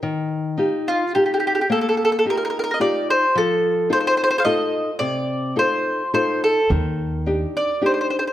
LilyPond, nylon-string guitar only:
\new Staff \with { instrumentName = "Nylon-string guitar" } { \time 3/4 \key ees \lydian \tempo 4 = 108 ees4 <ees' f' g'>4 <ees' f' g'>4 | bes4 <ees' f' g'>4 <ees' f' g'>4 | f4 <ees' f' a'>4 <ees' f' a'>4 | c4 <ees' f' a'>4 <ees' f' a'>4 |
ees4 <d' ees' g'>4 <d' ees' g'>4 | }